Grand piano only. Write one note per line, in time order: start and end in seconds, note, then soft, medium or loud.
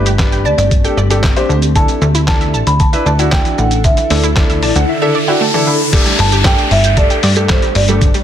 0.19 0.52 D4 medium
0.19 0.52 G4 medium
0.19 0.52 B4 medium
0.84 0.97 D4 medium
0.84 0.97 G4 medium
0.84 0.97 A4 medium
1.10 1.23 D4 medium
1.10 1.23 G4 medium
1.10 1.24 A4 medium
1.36 1.56 D4 medium
1.36 1.56 G4 medium
1.36 1.56 C5 loud
1.75 2.02 D4 medium
1.75 2.02 E4 medium
1.75 2.02 A4 medium
2.27 2.60 D4 medium
2.27 2.60 E4 medium
2.27 2.60 A4 medium
2.93 3.06 D4 medium
2.93 3.06 E4 medium
2.93 3.06 B4 loud
3.19 3.65 D4 medium
3.19 3.65 E4 medium
3.19 3.65 F#4 loud
4.10 4.23 D4 medium
4.10 4.24 E4 medium
4.10 4.24 A4 medium
4.36 4.69 D4 medium
4.36 4.69 E4 medium
4.36 4.69 A4 medium
4.63 4.75 D5 medium
4.76 4.88 F#5 medium
4.89 5.25 E5 medium
5.01 5.15 D4 medium
5.01 5.15 E4 medium
5.01 5.15 A4 loud
5.28 5.41 D4 medium
5.28 5.41 E4 medium
5.28 5.41 F#4 loud
5.28 5.40 G5 medium
5.41 5.65 A5 medium
5.54 5.73 D4 medium
5.54 5.74 E4 medium
5.54 5.74 A4 loud
5.67 5.91 B5 medium
5.92 6.19 A3 loud
5.92 6.19 D4 medium
5.92 6.19 G4 medium
5.92 6.19 A4 loud
6.45 6.71 A3 medium
6.45 6.71 D4 medium
6.45 6.71 G4 medium
6.45 6.71 A4 medium
6.97 7.17 A3 medium
6.97 7.17 D4 medium
6.97 7.17 G4 medium
6.97 7.17 A4 medium
7.36 7.62 A3 medium
7.36 7.63 D4 medium
7.36 7.63 G4 medium
7.36 7.63 A4 medium
7.88 8.08 A3 medium
7.88 8.08 D4 medium
7.88 8.08 G4 medium
7.88 8.08 A4 medium